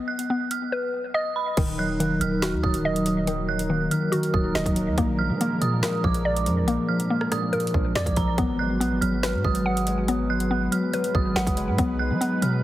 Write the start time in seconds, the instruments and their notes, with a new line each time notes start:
Already playing: synth pluck B3 B4 D#5
0.08 synth bell F#6
0.19 closed hi-hat
0.30 synth pluck B3
0.51 synth bell F6, closed hi-hat
0.72 synth pluck B4
1.14 synth pluck D#5, synth bell D#6
1.36 synth bell B5
1.57 808-style bass D#1, harp D#3, synth pluck D#3, analog synth pad F#3 D#4 A#4, kick, closed hi-hat, crash
1.78 harp F#3, synth bell F#6
2.00 808-style bass F1, synth pluck D#3, harp A#3, closed hi-hat
2.10 808-style bass D#1
2.21 808-style bass D#1, harp D#3, synth bell F6, closed hi-hat
2.42 harp D#3, synth pluck F#4, snare, closed hi-hat
2.53 808-style bass D#2
2.63 808-style bass D#1, harp F#3, synth bell D#6, kick
2.74 closed hi-hat
2.85 harp D#3, synth pluck D#5
2.96 closed hi-hat
3.06 harp F#3, closed hi-hat
3.27 synth pluck D#3, harp D#3, closed hi-hat
3.48 harp F#3, synth bell F#6
3.59 closed hi-hat
3.70 synth pluck D#3, harp A#3
3.91 harp D#3, synth bell F6, closed hi-hat
4.12 harp D#3, synth pluck F#4, closed hi-hat
4.23 closed hi-hat
4.34 808-style bass D#1, harp F#3, synth bell D#6, kick
4.55 808-style bass D#1, harp D#3, synth pluck D#5, snare
4.66 808-style bass D1, kick, closed hi-hat
4.76 harp F#3, closed hi-hat
4.87 808-style bass D#2
4.98 808-style bass A#1, harp A#2, analog synth pad G#3 D4, synth pluck A#3, kick, closed hi-hat
5.19 harp F3, synth bell F6
5.30 808-style bass F3
5.41 harp G#3, synth pluck A#3, closed hi-hat
5.61 harp A#2, 808-style bass A#2, synth bell D#6, closed hi-hat
5.83 harp A#2, synth pluck A#4, snare, closed hi-hat
6.04 808-style bass A#1, harp F3, synth bell D6, kick
6.14 closed hi-hat
6.25 harp A#2, synth pluck D5
6.37 closed hi-hat
6.46 808-style bass F2, harp F3, closed hi-hat
6.63 808-style bass A#1
6.68 harp A#2, synth pluck A#3, closed hi-hat
6.88 harp F3, synth bell F6
7.00 closed hi-hat
7.10 harp G#3, synth pluck A#3
7.21 cross-stick
7.31 harp A#2, synth bell D#6, cross-stick, closed hi-hat
7.53 harp A#2, synth pluck A#4, closed hi-hat
7.60 closed hi-hat
7.67 closed hi-hat
7.74 808-style bass A#1, harp F3, kick
7.95 808-style bass F2, harp A#2, synth pluck D5, synth bell D6, snare
8.06 808-style bass A#1, kick, closed hi-hat
8.16 808-style bass A#1, harp F3, synth bell A#5, kick, closed hi-hat
8.38 808-style bass G#1, harp F#3, analog synth pad G#3 F#4 B4, synth pluck B3, kick, closed hi-hat
8.59 harp G#3, synth bell F#6
8.80 808-style bass A#1, synth pluck B3, harp B3, closed hi-hat
8.91 808-style bass G#1
9.01 808-style bass G#1, harp F#3, synth bell F6, closed hi-hat
9.23 harp F#3, synth pluck B4, snare, closed hi-hat
9.34 808-style bass G#2
9.44 808-style bass G#1, harp G#3, synth bell D#6, kick
9.55 closed hi-hat
9.65 harp F#3, synth pluck F#5
9.77 closed hi-hat
9.87 harp G#3, closed hi-hat
10.08 harp F#3, synth pluck B3, closed hi-hat
10.29 harp G#3, synth bell F#6
10.40 closed hi-hat
10.51 synth pluck B3, harp B3
10.72 harp F#3, synth bell F6, closed hi-hat
10.93 harp F#3, synth pluck B4, closed hi-hat
11.04 closed hi-hat
11.14 808-style bass G#1, harp G#3, synth bell D#6, kick
11.35 808-style bass G#1, harp F#3, synth pluck F#5, snare
11.47 808-style bass F#1, kick, closed hi-hat
11.57 harp G#3, closed hi-hat
11.68 808-style bass G#2
11.78 808-style bass B1, harp F#3, synth pluck B3, analog synth pad D#4, kick, closed hi-hat
11.99 harp G#3, synth bell F#6
12.10 808-style bass F#3
12.21 synth pluck B3, harp B3, closed hi-hat
12.42 808-style bass B2, harp F#3, synth bell F6, closed hi-hat